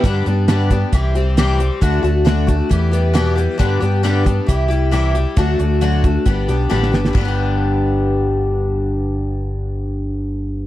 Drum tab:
CC |----------------|----------------|----------------|----------------|
HH |x-x-x-x-x-x-x-x-|x-x-x-x-x-x-x-x-|x-x-x-x-x-x-x-x-|x-x-x-x-x-x-----|
SD |----o-------o---|----o-------o---|----------------|------------oooo|
BD |o-----o-o-------|o-----o-o-------|o-----o-o-------|o-----o-o-------|

CC |x---------------|----------------|
HH |----------------|----------------|
SD |----------------|----------------|
BD |o---------------|----------------|